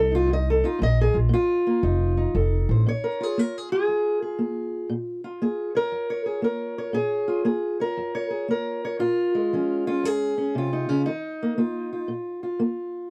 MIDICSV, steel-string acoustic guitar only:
0, 0, Header, 1, 2, 480
1, 0, Start_track
1, 0, Key_signature, -5, "minor"
1, 0, Tempo, 513259
1, 746, Time_signature, 4, 2, 24, 8
1, 12251, End_track
2, 0, Start_track
2, 0, Title_t, "Steel-string acoustic guitar"
2, 0, Program_c, 0, 25
2, 0, Note_on_c, 0, 41, 68
2, 0, Note_on_c, 0, 63, 50
2, 0, Note_on_c, 0, 69, 95
2, 97, Note_off_c, 0, 63, 0
2, 108, Note_on_c, 0, 63, 40
2, 117, Note_off_c, 0, 69, 0
2, 139, Note_on_c, 0, 65, 106
2, 230, Note_off_c, 0, 41, 0
2, 254, Note_on_c, 0, 41, 70
2, 283, Note_off_c, 0, 65, 0
2, 310, Note_on_c, 0, 75, 106
2, 448, Note_off_c, 0, 75, 0
2, 469, Note_on_c, 0, 69, 93
2, 585, Note_off_c, 0, 63, 0
2, 596, Note_on_c, 0, 63, 56
2, 607, Note_off_c, 0, 69, 0
2, 607, Note_on_c, 0, 65, 92
2, 707, Note_off_c, 0, 41, 0
2, 733, Note_off_c, 0, 63, 0
2, 737, Note_on_c, 0, 46, 71
2, 756, Note_off_c, 0, 65, 0
2, 778, Note_on_c, 0, 75, 114
2, 922, Note_off_c, 0, 75, 0
2, 948, Note_on_c, 0, 68, 96
2, 1062, Note_on_c, 0, 65, 46
2, 1086, Note_off_c, 0, 68, 0
2, 1188, Note_off_c, 0, 46, 0
2, 1208, Note_on_c, 0, 46, 78
2, 1238, Note_off_c, 0, 65, 0
2, 1249, Note_on_c, 0, 65, 105
2, 1559, Note_on_c, 0, 58, 51
2, 1663, Note_off_c, 0, 46, 0
2, 1693, Note_off_c, 0, 58, 0
2, 1708, Note_on_c, 0, 41, 77
2, 1713, Note_on_c, 0, 63, 49
2, 2021, Note_off_c, 0, 63, 0
2, 2032, Note_on_c, 0, 63, 45
2, 2153, Note_off_c, 0, 41, 0
2, 2192, Note_on_c, 0, 41, 70
2, 2196, Note_off_c, 0, 65, 0
2, 2199, Note_on_c, 0, 69, 49
2, 2534, Note_on_c, 0, 72, 53
2, 2636, Note_off_c, 0, 41, 0
2, 2649, Note_off_c, 0, 63, 0
2, 2650, Note_off_c, 0, 69, 0
2, 2661, Note_off_c, 0, 72, 0
2, 2679, Note_on_c, 0, 46, 70
2, 2698, Note_on_c, 0, 73, 87
2, 2842, Note_on_c, 0, 70, 73
2, 2997, Note_on_c, 0, 65, 46
2, 3023, Note_off_c, 0, 70, 0
2, 3023, Note_on_c, 0, 68, 90
2, 3118, Note_off_c, 0, 46, 0
2, 3157, Note_on_c, 0, 58, 61
2, 3172, Note_off_c, 0, 68, 0
2, 3172, Note_on_c, 0, 70, 77
2, 3320, Note_off_c, 0, 73, 0
2, 3345, Note_off_c, 0, 70, 0
2, 3345, Note_on_c, 0, 68, 88
2, 3468, Note_off_c, 0, 68, 0
2, 3479, Note_on_c, 0, 68, 90
2, 3481, Note_off_c, 0, 65, 0
2, 3485, Note_on_c, 0, 65, 45
2, 3597, Note_off_c, 0, 58, 0
2, 3628, Note_on_c, 0, 41, 57
2, 3938, Note_off_c, 0, 68, 0
2, 3950, Note_on_c, 0, 68, 41
2, 4073, Note_off_c, 0, 41, 0
2, 4102, Note_on_c, 0, 58, 52
2, 4549, Note_off_c, 0, 58, 0
2, 4578, Note_on_c, 0, 46, 71
2, 4606, Note_off_c, 0, 68, 0
2, 4898, Note_off_c, 0, 65, 0
2, 4902, Note_on_c, 0, 65, 47
2, 5027, Note_off_c, 0, 46, 0
2, 5066, Note_on_c, 0, 58, 69
2, 5070, Note_on_c, 0, 68, 49
2, 5377, Note_on_c, 0, 73, 42
2, 5388, Note_off_c, 0, 68, 0
2, 5391, Note_on_c, 0, 70, 97
2, 5511, Note_off_c, 0, 58, 0
2, 5535, Note_on_c, 0, 41, 57
2, 5701, Note_off_c, 0, 73, 0
2, 5705, Note_on_c, 0, 73, 70
2, 5850, Note_off_c, 0, 70, 0
2, 5854, Note_on_c, 0, 68, 44
2, 5985, Note_off_c, 0, 41, 0
2, 6005, Note_on_c, 0, 58, 56
2, 6020, Note_off_c, 0, 68, 0
2, 6024, Note_on_c, 0, 70, 77
2, 6332, Note_off_c, 0, 73, 0
2, 6343, Note_on_c, 0, 73, 63
2, 6460, Note_off_c, 0, 58, 0
2, 6480, Note_on_c, 0, 46, 72
2, 6490, Note_off_c, 0, 70, 0
2, 6494, Note_on_c, 0, 68, 92
2, 6802, Note_off_c, 0, 65, 0
2, 6806, Note_on_c, 0, 65, 47
2, 6938, Note_off_c, 0, 46, 0
2, 6956, Note_off_c, 0, 68, 0
2, 6964, Note_on_c, 0, 58, 67
2, 6970, Note_on_c, 0, 68, 54
2, 6981, Note_off_c, 0, 73, 0
2, 7294, Note_on_c, 0, 73, 41
2, 7303, Note_off_c, 0, 68, 0
2, 7307, Note_on_c, 0, 70, 92
2, 7420, Note_off_c, 0, 58, 0
2, 7455, Note_on_c, 0, 41, 67
2, 7616, Note_off_c, 0, 73, 0
2, 7620, Note_on_c, 0, 73, 80
2, 7762, Note_off_c, 0, 70, 0
2, 7766, Note_on_c, 0, 68, 42
2, 7905, Note_off_c, 0, 41, 0
2, 7933, Note_on_c, 0, 58, 58
2, 7934, Note_off_c, 0, 68, 0
2, 7955, Note_on_c, 0, 70, 79
2, 8260, Note_off_c, 0, 73, 0
2, 8273, Note_on_c, 0, 73, 72
2, 8384, Note_off_c, 0, 58, 0
2, 8409, Note_on_c, 0, 46, 63
2, 8412, Note_off_c, 0, 73, 0
2, 8416, Note_off_c, 0, 65, 0
2, 8416, Note_on_c, 0, 65, 96
2, 8741, Note_on_c, 0, 56, 44
2, 8747, Note_off_c, 0, 70, 0
2, 8862, Note_off_c, 0, 46, 0
2, 8912, Note_on_c, 0, 53, 66
2, 8920, Note_on_c, 0, 61, 48
2, 9215, Note_off_c, 0, 65, 0
2, 9232, Note_on_c, 0, 65, 88
2, 9233, Note_off_c, 0, 61, 0
2, 9237, Note_on_c, 0, 61, 43
2, 9353, Note_off_c, 0, 53, 0
2, 9384, Note_on_c, 0, 41, 61
2, 9401, Note_off_c, 0, 65, 0
2, 9401, Note_on_c, 0, 68, 98
2, 9701, Note_off_c, 0, 61, 0
2, 9704, Note_on_c, 0, 61, 46
2, 9829, Note_off_c, 0, 41, 0
2, 9866, Note_on_c, 0, 48, 64
2, 9871, Note_off_c, 0, 68, 0
2, 9894, Note_on_c, 0, 65, 73
2, 10029, Note_off_c, 0, 61, 0
2, 10033, Note_on_c, 0, 63, 68
2, 10181, Note_off_c, 0, 48, 0
2, 10181, Note_off_c, 0, 63, 0
2, 10181, Note_on_c, 0, 61, 72
2, 10188, Note_on_c, 0, 49, 72
2, 10337, Note_off_c, 0, 61, 0
2, 10341, Note_on_c, 0, 63, 99
2, 10342, Note_off_c, 0, 56, 0
2, 10346, Note_off_c, 0, 49, 0
2, 10357, Note_off_c, 0, 65, 0
2, 10362, Note_on_c, 0, 51, 64
2, 10685, Note_on_c, 0, 58, 45
2, 10799, Note_off_c, 0, 51, 0
2, 10822, Note_off_c, 0, 58, 0
2, 10826, Note_on_c, 0, 58, 64
2, 10833, Note_on_c, 0, 65, 48
2, 11150, Note_off_c, 0, 65, 0
2, 11153, Note_on_c, 0, 65, 42
2, 11271, Note_off_c, 0, 58, 0
2, 11297, Note_on_c, 0, 46, 60
2, 11302, Note_off_c, 0, 63, 0
2, 11621, Note_off_c, 0, 65, 0
2, 11624, Note_on_c, 0, 65, 47
2, 11747, Note_off_c, 0, 46, 0
2, 11779, Note_on_c, 0, 58, 59
2, 12228, Note_off_c, 0, 58, 0
2, 12251, Note_off_c, 0, 65, 0
2, 12251, End_track
0, 0, End_of_file